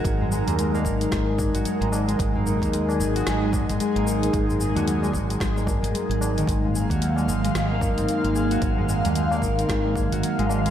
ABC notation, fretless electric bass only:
X:1
M:4/4
L:1/16
Q:"Swing 16ths" 1/4=112
K:Abmix
V:1 name="Fretless electric bass" clef=bass
A,,,3 E,,3 A,,,2 A,,,3 A,,, z A,,,3 | A,,,3 E,,3 A,,,2 A,,,3 A,,, z A,,,3 | A,,,3 E,,3 A,,,2 A,,,3 A,,, z A,,,3 | A,,,3 E,,3 A,,,2 A,,,3 A,,, z A,,,3 |
A,,,3 E,,3 A,,,2 A,,,3 A,,, z A,,,3 |]